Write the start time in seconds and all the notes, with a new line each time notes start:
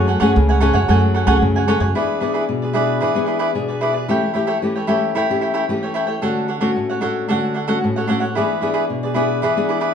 Already playing: F#2 F#3
0.07 A4 C#5 F#5 G#5
0.20 F#2 A3 C#4 G#4 A4 C#5 F#5 G#5
0.36 C#2 C#3
0.49 C#5 F#5 G#5
0.61 A3 C#4 G#4 A4 C#5 F#5 G#5
0.73 F#2 C#5 F#5 G#5
0.88 F#2 F#3 A3 C#4 G#4 A4 C#5 F#5 G#5
1.14 A4 C#5 F#5 G#5
1.27 C#2 A3 C#4 G#4 A4 C#5 F#5 G#5
1.41 F#2 C#3
1.56 C#5 F#5 G#5
1.68 A3 C#4 G#4 A4 C#5 F#5 G#5
1.80 F#2 C#5 F#5 G#5
1.95 E3 B3 D4 E4 G#4 B4 D5
2.20 B3 D4 E4 G#4 B4 D5
2.34 E4 G#4 B4 D5
2.49 B2
2.62 G#4 B4 D5
2.73 B3 D4 E4 G#4 B4 D5
3.01 E3 E4 G#4 B4 D5
3.15 B3 D4 G#4
3.26 E4 G#4 B4 D5
3.39 E4 G#4 B4 D5
3.55 B2 B3 D4 G#4
3.68 G#4 B4 D5
3.81 E4 G#4 B4 D5
3.93 G#4 B4 D5
4.08 E3 A3 C#4 E4 G4 A4 C#5 G5
4.34 A3 C#4 E4 G4 A4 C#5 G5
4.47 E4 A4 C#5 G5
4.62 E3 A3 C#4 G4
4.75 A4 C#5 G5
4.87 A3 C#4 E4 G4 A4 C#5 G5
5.15 E3 E4 A4 C#5 G5
5.30 A3 C#4 G4
5.41 E4 A4 C#5 G5
5.54 E4 A4 C#5 G5
5.69 E3 A3 C#4 G4
5.83 A4 C#5 G5
5.94 E4 A4 C#5 G5
6.07 A4 C#5 G5
6.22 D3 A3 C#4 D4 F#4 A4 C#5 F#5
6.48 D4 A4 C#5 F#5
6.61 A3 C#4 D4 F#4 A4 C#5 F#5
6.76 A2
6.90 A4 C#5 F#5
7.01 A3 C#4 D4 F#4 A4 C#5 F#5
7.28 D3 A3 C#4 D4 F#4 A4 C#5 F#5
7.54 D4 A4 C#5 F#5
7.67 A3 C#4 D4 F#4 A4 C#5 F#5
7.84 A2
7.96 A4 C#5 F#5
8.07 A3 C#4 D4 F#4 A4 C#5 F#5
8.20 A4 C#5 F#5
8.35 E3 B3 D4 E4 G#4 B4 D5
8.61 B3 D4 E4 G#4 B4 D5
8.74 E4 G#4 B4 D5
8.90 B2
9.03 G#4 B4 D5
9.14 B3 D4 E4 G#4 B4 D5
9.42 E3 E4 G#4 B4 D5
9.57 B3 D4 G#4
9.69 E4 G#4 B4 D5
9.81 E4 G#4 B4 D5